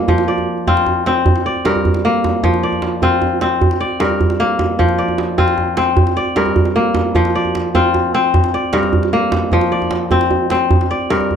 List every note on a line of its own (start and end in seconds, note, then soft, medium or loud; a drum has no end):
0.00 0.13 G2 medium
0.00 1.61 A#3 medium
0.00 0.51 C4 medium
0.00 0.57 A#4 medium
0.00 0.21 D5 medium
0.08 1.31 F3 medium
0.08 djembe bass medium
0.18 djembe slap medium
0.28 1.39 D5 medium
0.28 djembe slap soft
0.38 djembe tone soft
0.58 djembe slap soft
0.67 1.06 C4 medium
0.67 2.19 F4 medium
0.67 djembe slap soft
0.67 djembe bass medium
0.77 djembe slap medium
0.86 djembe tone medium
1.06 2.87 C4 medium
1.06 djembe slap medium
1.26 djembe slap soft
1.26 djembe tone medium
1.26 djembe bass medium
1.36 djembe slap medium
1.45 2.57 D5 medium
1.45 djembe slap soft
1.56 djembe slap soft
1.65 2.49 G2 medium
1.65 2.93 A#4 medium
1.65 djembe slap medium
1.75 djembe tone soft
1.85 djembe bass medium
1.94 djembe slap soft
2.04 3.98 A#3 medium
2.04 djembe slap soft
2.24 djembe slap medium
2.24 djembe tone medium
2.34 djembe slap soft
2.43 3.66 F3 medium
2.43 djembe slap soft
2.43 djembe bass medium
2.54 djembe slap soft
2.63 3.74 D5 medium
2.73 djembe tone soft
2.82 djembe slap medium
3.02 3.41 C4 medium
3.02 4.54 F4 medium
3.02 djembe bass medium
3.22 djembe tone medium
3.32 djembe slap soft
3.41 5.22 C4 medium
3.41 djembe slap medium
3.61 djembe tone medium
3.61 djembe bass medium
3.71 djembe slap medium
3.80 4.91 D5 medium
4.00 4.84 G2 medium
4.00 5.27 A#4 medium
4.00 djembe slap medium
4.10 djembe tone soft
4.20 djembe bass medium
4.30 djembe slap soft
4.40 6.33 A#3 medium
4.59 djembe slap medium
4.59 djembe tone medium
4.79 6.02 F3 medium
4.79 djembe slap soft
4.79 djembe bass medium
4.88 djembe slap soft
4.98 6.09 D5 medium
5.08 djembe tone soft
5.18 djembe slap medium
5.38 5.77 C4 medium
5.38 6.90 F4 medium
5.38 djembe bass medium
5.48 djembe slap soft
5.57 djembe tone medium
5.68 djembe slap soft
5.77 7.57 C4 medium
5.77 djembe slap medium
5.97 djembe tone medium
5.97 djembe bass medium
6.07 djembe slap medium
6.17 7.27 D5 medium
6.36 7.21 G2 medium
6.36 7.64 A#4 medium
6.36 djembe slap medium
6.46 djembe tone soft
6.56 djembe bass medium
6.65 djembe slap medium
6.76 8.69 A#3 medium
6.95 djembe slap medium
6.95 djembe tone medium
7.15 8.39 F3 medium
7.15 djembe slap soft
7.15 djembe bass medium
7.25 djembe slap soft
7.35 8.46 D5 medium
7.45 djembe tone medium
7.55 djembe slap medium
7.75 8.14 C4 medium
7.75 9.27 F4 medium
7.75 djembe bass medium
7.94 djembe tone medium
8.04 djembe slap soft
8.14 9.95 C4 medium
8.34 djembe tone medium
8.34 djembe bass medium
8.44 djembe slap medium
8.54 9.65 D5 medium
8.73 9.58 G2 medium
8.73 10.01 A#4 medium
8.73 djembe slap medium
8.83 djembe tone medium
8.93 djembe bass medium
9.03 djembe slap medium
9.13 11.06 A#3 medium
9.32 djembe slap medium
9.32 djembe tone medium
9.52 10.76 F3 medium
9.52 djembe slap soft
9.52 djembe bass medium
9.61 djembe slap soft
9.72 10.83 D5 medium
9.72 djembe slap soft
9.82 djembe slap soft
9.82 djembe tone medium
9.91 djembe slap medium
10.11 10.51 C4 medium
10.11 djembe bass medium
10.21 djembe slap soft
10.31 djembe tone medium
10.50 11.36 C4 medium
10.50 djembe slap medium
10.61 djembe slap soft
10.71 djembe slap soft
10.71 djembe tone medium
10.71 djembe bass medium
10.81 djembe slap medium
10.91 11.36 D5 medium
11.01 djembe slap soft
11.10 11.36 G2 medium
11.10 11.36 A#4 medium
11.10 djembe slap medium
11.20 djembe tone soft
11.31 djembe bass soft